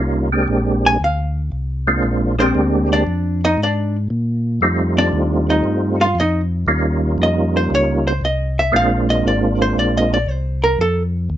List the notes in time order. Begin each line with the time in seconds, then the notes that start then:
Already playing: C2 G3 A#3 C#4 D#4 F4
0.32 G#3 A#3 C4 D4 G4
0.48 A#1
0.86 G#5
1.00 D2
1.04 F5
1.52 C2
1.87 G#3 A#3 C4 D4 F4
2.03 A#1
2.38 G#3 A#3 C4 D4 G4 C5
2.55 D2
2.93 D4 D5
3.07 F2
3.45 D#4 D#5
3.58 G#2
3.63 D4 D5
4.10 A#2
4.61 F2 G3 A3 C4 D#4 F4
4.98 D4 D5
5.13 D#2
5.50 D#4 D#5
5.64 G2
6.01 F4 F5
6.15 F2
6.20 D#4 D#5
6.67 D#2 G3 A#3 C#4 D#4 F4
7.18 F2
7.23 D#5
7.57 C5
7.70 C#2
7.75 C#5
8.07 C5
8.21 C2 D#5
8.59 E5
8.72 A#1 G#3 A#3 C4 D4 F4 F5
9.10 D#5
9.25 G#1 D5
9.62 C5
9.75 A#1 D5
9.97 D#5
10.14 D5
10.27 C2
10.31 C5
10.64 A#4
10.79 F2 A4
11.30 D#2